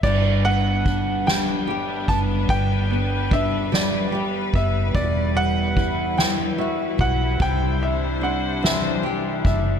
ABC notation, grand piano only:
X:1
M:6/8
L:1/8
Q:3/8=49
K:G
V:1 name="Grand piano"
d f2 g2 a | g2 e d2 e | d f2 g e f | g e f e2 e |]